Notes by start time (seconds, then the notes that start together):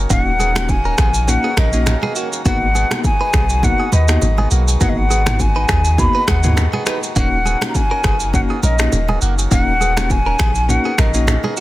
Already playing: D#3 A#3 C#4 F#4
0.10 D#1 A#3 C#4 D#4 F#4 F#5, kick, low conga, shaker
0.39 B3 G#4, low bongo, shaker
0.55 A#3 C#4 D#4 F#4, finger snap, cross-stick, low bongo, shaker
0.69 G#5, kick, high bongo, shaker
0.85 C#4 A#4
0.98 A#1 B3 G#4, finger snap, kick, cross-stick, shaker
1.14 shaker
1.28 A#3 C#4 D#4 F#4 F#5, high bongo, low conga, shaker
1.44 B3 G#4
1.57 A#1 C#4 A#4 D#5, finger snap, kick, cross-stick, low bongo, shaker
1.73 A#3 C#4 D#4 F#4, shaker
1.86 finger snap, cross-stick, high bongo, low conga, shaker
2.03 B3 G#4, low bongo
2.16 A#3 F#4, shaker
2.33 shaker
2.45 G#1 D#3 G#3 A#3 B3 D#4 F#4 F#5, kick, low conga, shaker
2.75 B3 G#4, low bongo, shaker
2.91 A#3 B3 D#4 F#4, finger snap, cross-stick, low bongo, shaker
3.04 G#5, kick, high bongo, shaker
3.21 D#4 B4
3.33 B1 B3 G#4, finger snap, kick, cross-stick, shaker
3.49 shaker
3.63 A#3 B3 D#4 F#4 F#5, kick, high bongo, low conga, shaker
3.80 B3 G#4
3.92 D#2 D#4 B4 D#5, low bongo, shaker
4.08 A#3 B3 D#4 F#4, finger snap, cross-stick, shaker
4.22 G#1, high bongo, low conga, shaker
4.38 B3 G#4, low bongo
4.51 B1 A#3 F#4, shaker
4.68 shaker
4.81 G#1 A#3 B3 D#4 F#4 F#5, kick, low conga, shaker
4.89 D#5
4.97 F#5
5.10 B3 G#4, low bongo, shaker
5.26 A#3 B3 D#4 F#4, finger snap, cross-stick, mid tom, low bongo, shaker
5.40 G#5, kick, high bongo, shaker
5.56 D#4 B4
5.69 D#2 B3 G#4, finger snap, kick, cross-stick, shaker
5.85 shaker
5.98 A#3 B3 D#4 F#4 B5, kick, high bongo, low conga, shaker
6.15 D#4 B4
6.28 D#2 B3 G#4 F#5, finger snap, kick, cross-stick, low bongo, shaker
6.43 A#3 B3 D#4 F#4, mid tom, shaker
6.57 finger snap, cross-stick, high bongo, low conga, shaker
6.73 B3 G#4, low bongo
6.86 D#4 B4, finger snap, cross-stick, shaker
7.03 shaker
7.16 D#1 A#3 C#4 D#4 F#4 F#5, kick, low conga, shaker
7.45 B3 G#4, low bongo, shaker
7.61 A#3 C#4 D#4 F#4, finger snap, cross-stick, low bongo, shaker
7.69 A#5
7.75 G#5, kick, high bongo, shaker
7.91 C#4 A#4
8.04 F#1 B3 G#4, finger snap, kick, cross-stick, shaker
8.20 shaker
8.33 A#3 C#4 D#4 F#4 F#5, kick, high bongo, low conga, shaker
8.50 B3 G#4
8.63 A#1 C#4 A#4 D#5, low bongo, shaker
8.79 A#3 C#4 D#4 F#4, finger snap, cross-stick, shaker
8.92 D#1, high bongo, low conga, shaker
9.08 B3 G#4, low bongo
9.22 F#1 A#3 F#4, shaker
9.39 shaker
9.51 D#1 A#3 C#4 D#4 F#4 F#5, kick, low conga, shaker
9.81 B3 G#4, low bongo, shaker
9.97 A#3 C#4 D#4 F#4, finger snap, cross-stick, low bongo, shaker
10.10 G#5, kick, high bongo, shaker
10.26 C#4 A#4
10.39 A#1 B3 G#4, finger snap, kick, cross-stick, shaker
10.55 shaker
10.69 A#3 C#4 D#4 F#4 F#5, high bongo, low conga, shaker
10.85 B3 G#4
10.98 A#1 C#4 A#4 D#5, finger snap, kick, cross-stick, low bongo, shaker
11.14 A#3 C#4 D#4 F#4, shaker
11.27 finger snap, cross-stick, high bongo, low conga, shaker
11.44 B3 G#4, low bongo
11.57 shaker